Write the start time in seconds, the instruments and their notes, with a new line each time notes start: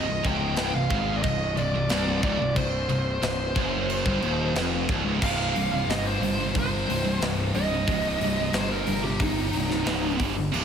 Already playing: lead electric guitar D#5
0.08 picked electric bass C1, distorted electric guitar C2
0.23 picked electric bass C#1, distorted electric guitar C#2, lead electric guitar G5, kick, crash
0.56 picked electric bass C1, distorted electric guitar C2, snare, crash
0.73 picked electric bass C1, distorted electric guitar C2, lead electric guitar F5
0.90 picked electric bass G#1, distorted electric guitar G#2, kick, crash
1.16 lead electric guitar D5
1.22 picked electric bass C1, distorted electric guitar C2, lead electric guitar D#5, kick, crash
1.54 picked electric bass C1, distorted electric guitar C2, lead electric guitar D5, crash
1.59 distorted electric guitar C2
1.72 picked electric bass C1, distorted electric guitar C2
1.89 picked electric bass C1, distorted electric guitar C2, snare, crash
2.21 picked electric bass C#1, distorted electric guitar C#2, lead electric guitar D5, kick, crash
2.39 picked electric bass C1, distorted electric guitar C2
2.54 picked electric bass C1, distorted electric guitar C2, lead electric guitar C5, kick, crash
2.88 picked electric bass C1, distorted electric guitar C2, crash
3.20 picked electric bass C1, distorted electric guitar C2, snare, crash
3.56 picked electric bass F#1, distorted electric guitar F#2, kick, crash
3.90 crash
4.05 picked electric bass G1, distorted electric guitar G2, kick
4.22 picked electric bass D#1, distorted electric guitar D#2, crash
4.54 picked electric bass F1, distorted electric guitar F2, snare, crash
4.89 picked electric bass C1, distorted electric guitar C2, kick, crash
5.04 picked electric bass C#1, distorted electric guitar C#2
5.20 picked electric bass C1, distorted electric guitar C2 G2 C3, lead electric guitar F5, kick, crash
5.24 distorted electric guitar C2 G2 C3
5.55 picked electric bass C1, distorted electric guitar C2 G2, open hi-hat
5.72 distorted electric guitar C2 G2
5.87 picked electric bass G1, distorted electric guitar C2 G2, lead electric guitar D#5, snare, open hi-hat
6.05 lead electric guitar C5
6.20 picked electric bass G1, distorted electric guitar C2 G2, open hi-hat
6.37 distorted electric guitar C2 G2
6.54 picked electric bass G1, distorted electric guitar C2 G2, kick, open hi-hat
6.59 lead electric guitar C5
6.87 picked electric bass C1, distorted electric guitar C2 G2, open hi-hat
7.04 distorted electric guitar C2 G2
7.20 picked electric bass C1, distorted electric guitar C2 G2, snare, open hi-hat
7.54 picked electric bass C1, distorted electric guitar C2 G2, lead electric guitar D#5, open hi-hat
7.71 distorted electric guitar C2 G2
7.88 picked electric bass C1, distorted electric guitar C2 G2 C3, kick, open hi-hat
8.19 picked electric bass C1, distorted electric guitar C2 G2, open hi-hat
8.24 distorted electric guitar C2 G2
8.39 distorted electric guitar C2 G2
8.53 picked electric bass G1, distorted electric guitar C2 G2, lead electric guitar C5, snare, open hi-hat
8.72 lead electric guitar A#4
8.87 picked electric bass G1, distorted electric guitar C2 G2, open hi-hat
9.04 distorted electric guitar C2 G2, lead electric guitar G4
9.19 picked electric bass G1, distorted electric guitar C2 G2, lead electric guitar D#4, kick, open hi-hat
9.52 picked electric bass C1, distorted electric guitar G2, open hi-hat
9.57 distorted electric guitar C2
9.71 distorted electric guitar C2 G2, snare
9.86 picked electric bass C#1, distorted electric guitar C#2 G#2 C#3, snare, open hi-hat
10.20 picked electric bass G1, distorted electric guitar G2 D3 G3, kick, open hi-hat
10.37 distorted electric guitar G2 D3
10.52 picked electric bass C1, distorted electric guitar C2 G2 C3, crash